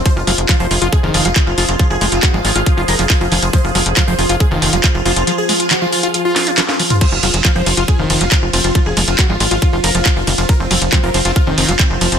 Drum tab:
CC |----------------|----------------|----------------|----------------|
RD |----------------|----------------|----------------|----------------|
HH |x-oxx-oxx-oxx-ox|x-oxx-oxx-oxx-ox|x-oxx-oxx-oxx-ox|x-oxx-oxx-oxx-ox|
CP |----x-------x---|----x-------x---|----x-------x---|----x-------x---|
SD |----------------|----------------|----------------|----------o-oo--|
T2 |----------------|----------------|----------------|---------------o|
BD |o---o---o---o---|o---o---o---o---|o---o---o---o---|----------------|

CC |x---------------|----------------|----------------|
RD |--x---x---x---x-|--x---x---x---x-|--x---x---x---x-|
HH |x-oxx-oxx-oxx-ox|x-oxx-oxx-oxx-ox|x-oxx-oxx-oxx-ox|
CP |----x-------x---|----x-------x---|----x-------x---|
SD |----------------|----------------|----------------|
T2 |----------------|----------------|----------------|
BD |o---o---o---o---|o---o---o---o---|o---o---o---o---|